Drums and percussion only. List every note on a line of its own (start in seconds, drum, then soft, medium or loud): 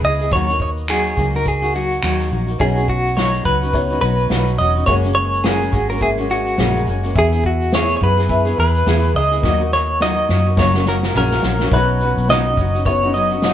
0.20 shaker soft
0.32 kick loud
0.32 shaker medium
0.49 shaker medium
0.60 kick medium
0.77 shaker soft
0.88 finger snap medium
0.88 shaker medium
1.05 shaker soft
1.17 kick medium
1.17 shaker medium
1.35 shaker soft
1.45 kick medium
1.45 shaker medium
1.62 shaker soft
1.74 shaker soft
1.91 shaker soft
2.03 finger snap loud
2.03 shaker medium
2.20 shaker medium
2.31 shaker soft
2.48 shaker medium
2.60 kick loud
2.60 shaker medium
2.77 shaker soft
2.88 kick medium
3.06 shaker soft
3.17 snare loud
3.17 shaker medium
3.34 shaker soft
3.45 kick medium
3.63 shaker soft
3.73 kick medium
3.73 shaker medium
3.90 shaker medium
4.02 shaker soft
4.18 shaker soft
4.30 snare loud
4.30 shaker medium
4.47 shaker medium
4.58 shaker soft
4.76 shaker soft
4.87 kick loud
4.87 shaker medium
5.04 shaker soft
5.33 shaker soft
5.44 snare loud
5.44 shaker medium
5.61 shaker soft
5.73 kick medium
5.73 shaker medium
5.90 shaker soft
6.01 kick medium
6.01 shaker medium
6.18 shaker medium
6.30 shaker soft
6.46 shaker soft
6.58 snare loud
6.58 shaker medium
6.76 shaker soft
6.87 shaker soft
7.04 shaker medium
7.15 kick loud
7.15 shaker medium
7.33 shaker medium
7.44 kick medium
7.61 shaker soft
7.72 snare loud
7.72 shaker medium
7.89 shaker medium
8.01 kick medium
8.18 snare soft
8.18 shaker soft
8.29 kick medium
8.29 shaker medium
8.46 shaker soft
8.75 shaker soft
8.87 snare loud
8.87 shaker medium
9.03 shaker medium
9.32 shaker medium
9.43 kick loud
9.43 snare medium
9.72 snare medium
10.00 snare medium
10.29 snare medium
10.57 kick medium
10.57 snare medium
10.74 snare medium
10.86 snare medium
11.03 snare medium
11.14 snare loud
11.31 snare medium
11.43 snare loud
11.60 snare medium
11.71 kick loud
11.71 shaker medium
12.00 shaker soft
12.17 shaker medium
12.29 snare loud
12.29 shaker medium
12.57 kick medium
12.57 shaker medium
12.74 shaker soft
12.85 kick medium
12.85 shaker medium
13.14 shaker soft
13.30 shaker soft
13.42 snare loud
13.42 shaker medium